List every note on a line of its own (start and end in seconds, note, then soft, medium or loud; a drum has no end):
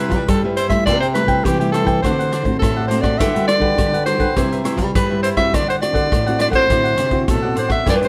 0.00 0.14 C3 medium
0.00 0.26 C3 medium
0.00 0.26 G3 medium
0.00 0.27 B3 medium
0.00 0.11 E4 medium
0.00 0.27 E4 medium
0.00 0.11 B4 medium
0.00 0.29 B4 medium
0.00 0.12 C5 medium
0.00 0.12 E5 medium
0.09 0.24 G3 medium
0.09 muted cavaquinho stroke soft
0.09 kick medium
0.09 closed hi-hat soft
0.28 0.84 G2 medium
0.28 0.87 G3 loud
0.28 0.42 A4 medium
0.28 kick medium
0.28 cross-stick medium
0.28 closed hi-hat medium
0.44 0.68 G3 medium
0.44 0.68 B3 medium
0.44 0.69 E4 medium
0.44 0.56 B4 soft
0.44 0.57 C5 soft
0.44 0.57 E5 medium
0.56 0.71 E4 medium
0.56 0.70 B4 medium
0.56 0.69 C5 medium
0.56 0.70 C5 medium
0.56 0.69 E5 medium
0.56 closed hi-hat medium
0.69 0.96 G3 medium
0.69 0.96 A3 medium
0.69 0.97 E4 medium
0.69 0.85 B4 soft
0.69 0.85 C5 soft
0.69 0.84 E5 medium
0.69 0.85 E5 medium
0.69 kick medium
0.69 cross-stick medium
0.69 closed hi-hat soft
0.86 1.24 C3 loud
0.86 1.43 C3 medium
0.86 1.00 A4 medium
0.86 1.00 C5 medium
0.86 1.00 D5 loud
0.86 1.01 E5 medium
0.86 1.01 G5 medium
0.86 kick medium
0.86 cross-stick medium
0.86 closed hi-hat medium
1.00 1.07 C5 medium
1.00 1.14 C5 soft
1.00 1.14 E5 soft
1.00 1.14 G5 soft
1.00 closed hi-hat soft
1.14 1.55 G3 medium
1.14 1.55 A3 medium
1.14 1.55 E4 medium
1.14 1.46 B4 medium
1.14 cross-stick medium
1.14 closed hi-hat soft
1.26 1.40 C3 medium
1.26 1.58 C5 medium
1.26 1.58 E5 medium
1.26 1.57 G5 medium
1.26 kick medium
1.26 closed hi-hat soft
1.44 2.00 C3 medium
1.44 1.82 E3 medium
1.44 1.59 G4 loud
1.44 kick medium
1.44 cross-stick medium
1.44 closed hi-hat medium
1.60 1.99 G3 medium
1.60 2.00 A3 medium
1.60 1.99 E4 medium
1.60 1.71 G4 medium
1.60 1.72 C5 soft
1.60 1.73 E5 soft
1.60 1.73 G5 soft
1.60 closed hi-hat soft
1.72 2.00 A4 medium
1.72 1.87 A4 soft
1.72 1.87 C5 soft
1.72 1.86 E5 medium
1.72 1.85 G5 medium
1.72 cross-stick medium
1.72 closed hi-hat soft
1.84 1.99 E3 medium
1.84 2.02 C5 medium
1.84 2.01 E5 medium
1.84 2.01 G5 medium
1.84 kick medium
1.84 closed hi-hat soft
2.02 2.43 D3 medium
2.02 2.59 D3 medium
2.02 2.31 A3 medium
2.02 2.31 C4 medium
2.02 2.17 D4 medium
2.02 2.31 F#4 medium
2.02 2.57 C5 medium
2.02 2.17 C5 medium
2.02 2.17 D5 medium
2.02 2.17 F#5 medium
2.02 kick medium
2.02 cross-stick medium
2.02 closed hi-hat medium
2.19 2.31 C5 soft
2.19 2.31 D5 soft
2.19 2.32 F#5 soft
2.19 closed hi-hat soft
2.32 2.43 D4 medium
2.32 2.43 C5 medium
2.32 2.43 D5 medium
2.32 2.44 F#5 medium
2.32 cross-stick medium
2.32 closed hi-hat soft
2.43 2.57 A2 medium
2.43 2.85 A3 medium
2.43 2.85 C4 medium
2.43 2.86 F#4 medium
2.43 muted cavaquinho stroke soft
2.43 kick medium
2.43 closed hi-hat soft
2.59 3.17 A2 medium
2.59 3.20 A2 loud
2.59 2.87 A4 medium
2.59 kick medium
2.63 cross-stick medium
2.63 closed hi-hat medium
2.76 2.88 C5 soft
2.76 2.89 D5 soft
2.76 2.89 F#5 medium
2.88 3.15 A3 medium
2.88 3.15 C4 medium
2.88 3.03 D4 medium
2.88 3.15 F#4 medium
2.88 3.03 C5 medium
2.88 3.02 D5 medium
2.88 3.01 F#5 medium
2.88 closed hi-hat medium
3.01 3.18 C5 soft
3.01 3.20 D5 medium
3.01 3.18 D5 soft
3.01 3.17 F#5 soft
3.01 kick medium
3.01 cross-stick medium
3.01 closed hi-hat soft
3.18 3.75 D3 medium
3.18 3.57 D3 medium
3.18 3.29 G3 medium
3.18 3.29 B3 medium
3.18 3.33 D4 medium
3.18 3.29 F#4 medium
3.18 3.33 G4 medium
3.18 3.33 B4 medium
3.18 3.47 E5 medium
3.18 3.33 F#5 medium
3.18 kick medium
3.18 cross-stick medium
3.18 closed hi-hat medium
3.34 3.74 G3 medium
3.34 3.74 B3 medium
3.34 3.74 F#4 medium
3.34 3.47 G4 soft
3.34 3.47 B4 soft
3.34 3.48 F#5 medium
3.34 closed hi-hat soft
3.48 4.03 D5 loud
3.48 cross-stick medium
3.48 closed hi-hat soft
3.59 3.74 D3 medium
3.59 3.91 G4 medium
3.59 3.91 B4 medium
3.59 3.91 F#5 medium
3.59 kick medium
3.77 4.33 D3 medium
3.77 4.16 D3 medium
3.77 3.95 G3 medium
3.77 3.95 B3 medium
3.77 3.96 F#4 medium
3.77 kick medium
3.77 cross-stick medium
3.77 closed hi-hat medium
3.93 4.06 G4 soft
3.93 4.06 B4 soft
3.93 4.07 F#5 soft
3.93 closed hi-hat soft
4.06 4.24 G3 medium
4.06 4.24 B3 medium
4.06 4.21 D4 medium
4.06 4.24 F#4 medium
4.06 4.20 G4 medium
4.06 4.19 B4 medium
4.06 4.63 C5 medium
4.06 4.18 F#5 medium
4.06 cross-stick medium
4.06 closed hi-hat soft
4.18 4.32 D3 medium
4.18 4.35 G4 medium
4.18 4.35 B4 medium
4.18 4.34 F#5 medium
4.18 kick medium
4.18 closed hi-hat soft
4.36 4.92 C3 medium
4.36 4.80 C3 medium
4.36 4.61 G3 medium
4.36 4.61 B3 medium
4.36 4.50 E4 medium
4.36 4.61 E4 medium
4.36 4.50 B4 medium
4.36 4.51 C5 medium
4.36 4.51 E5 medium
4.36 kick medium
4.36 cross-stick medium
4.36 closed hi-hat medium
4.52 4.64 B4 soft
4.52 4.64 C5 soft
4.52 4.64 E5 medium
4.52 closed hi-hat soft
4.64 5.04 G3 medium
4.64 5.05 B3 medium
4.64 4.76 E4 medium
4.64 5.05 E4 medium
4.64 4.77 B4 medium
4.64 4.77 C5 medium
4.64 4.77 E5 medium
4.64 cross-stick medium
4.64 closed hi-hat medium
4.76 4.90 G3 medium
4.76 muted cavaquinho stroke soft
4.76 kick medium
4.76 closed hi-hat soft
4.95 5.51 G2 medium
4.95 5.54 G3 loud
4.95 5.22 B4 medium
4.95 kick medium
4.95 cross-stick medium
4.95 closed hi-hat medium
5.10 5.35 G3 medium
5.10 5.35 B3 medium
5.10 5.35 E4 medium
5.10 5.23 B4 soft
5.10 5.23 C5 soft
5.10 5.23 E5 soft
5.23 5.37 E4 medium
5.23 5.37 B4 medium
5.23 5.30 C5 medium
5.23 5.36 C5 medium
5.23 5.35 E5 medium
5.23 closed hi-hat medium
5.37 5.62 C4 medium
5.37 5.63 E4 medium
5.37 5.63 F#4 medium
5.37 5.52 B4 soft
5.37 5.52 C5 soft
5.37 5.51 E5 medium
5.37 5.56 E5 loud
5.37 kick medium
5.37 cross-stick medium
5.37 closed hi-hat soft
5.53 6.09 D3 medium
5.53 5.91 D3 loud
5.53 5.67 D4 medium
5.53 5.67 C5 medium
5.53 5.67 D5 medium
5.53 5.68 D5 loud
5.53 5.67 F#5 medium
5.53 kick medium
5.53 cross-stick medium
5.53 closed hi-hat medium
5.68 5.80 C5 soft
5.68 5.76 C5 medium
5.68 5.80 D5 soft
5.68 5.80 F#5 soft
5.68 closed hi-hat soft
5.81 6.09 C4 medium
5.81 6.10 E4 medium
5.81 6.10 F#4 medium
5.81 6.36 D5 loud
5.81 muted cavaquinho stroke soft
5.81 cross-stick medium
5.81 closed hi-hat soft
5.93 6.07 D3 medium
5.93 6.24 C5 medium
5.93 6.24 D5 medium
5.93 6.23 F#5 medium
5.93 kick medium
5.93 closed hi-hat soft
6.12 6.67 A2 medium
6.12 6.49 A2 medium
6.12 kick medium
6.12 cross-stick medium
6.12 closed hi-hat medium
6.26 6.51 C4 medium
6.26 6.52 E4 medium
6.26 6.52 F#4 medium
6.26 6.38 C5 soft
6.26 6.39 D5 soft
6.26 6.38 F#5 medium
6.26 closed hi-hat soft
6.38 6.53 D4 medium
6.38 6.52 C5 medium
6.38 6.51 D5 medium
6.38 6.48 D5 loud
6.38 6.50 F#5 medium
6.38 cross-stick medium
6.38 closed hi-hat soft
6.51 6.65 A2 medium
6.51 6.65 C4 medium
6.51 6.68 C5 medium
6.51 6.67 D5 medium
6.51 6.67 F#5 medium
6.51 kick medium
6.51 closed hi-hat soft
6.55 6.65 E4 medium
6.55 6.65 F#4 medium
6.55 7.24 C5 loud
6.69 6.95 A2 medium
6.69 7.26 D3 medium
6.69 7.10 C4 medium
6.69 6.83 D4 medium
6.69 7.10 E4 medium
6.69 7.10 F#4 medium
6.69 6.83 C5 medium
6.69 6.83 D5 medium
6.69 6.83 F#5 medium
6.69 kick medium
6.69 cross-stick medium
6.69 closed hi-hat medium
6.84 6.95 C5 soft
6.84 6.96 D5 soft
6.84 6.96 F#5 soft
6.84 closed hi-hat soft
6.96 7.25 C3 medium
6.96 7.09 D4 medium
6.96 7.09 C5 medium
6.96 7.09 D5 medium
6.96 7.10 F#5 medium
6.96 cross-stick medium
6.96 closed hi-hat soft
7.10 7.37 C4 medium
7.10 7.37 E4 medium
7.10 7.38 F#4 medium
7.10 muted cavaquinho stroke soft
7.10 kick medium
7.10 closed hi-hat soft
7.28 7.84 A2 medium
7.28 7.54 B2 medium
7.28 7.56 A4 medium
7.28 kick medium
7.28 cross-stick medium
7.28 closed hi-hat medium
7.42 7.82 C4 medium
7.42 7.82 E4 medium
7.42 7.83 F#4 medium
7.42 7.55 C5 soft
7.42 7.55 D5 soft
7.42 7.55 F#5 soft
7.55 7.83 A2 medium
7.55 7.70 D4 medium
7.55 7.69 C5 medium
7.55 7.71 C5 medium
7.55 7.68 D5 medium
7.55 7.67 F#5 medium
7.55 closed hi-hat soft
7.68 7.84 C5 soft
7.68 7.84 D5 soft
7.68 7.85 E5 medium
7.68 7.84 F#5 medium
7.68 kick medium
7.68 cross-stick medium
7.68 closed hi-hat soft
7.86 8.08 G2 soft
7.86 8.08 G2 loud
7.86 7.95 E3 medium
7.86 7.95 B3 medium
7.86 7.95 D4 medium
7.86 7.99 E4 medium
7.86 8.00 G4 medium
7.86 8.00 B4 medium
7.86 8.00 D5 medium
7.86 7.95 D5 medium
7.86 kick medium
7.86 cross-stick medium
7.86 closed hi-hat medium
8.01 8.08 E3 medium
8.01 8.08 B3 medium
8.01 8.08 D4 medium
8.01 8.08 G4 soft
8.01 8.08 B4 soft
8.01 8.08 C5 medium
8.01 8.08 D5 soft
8.01 closed hi-hat soft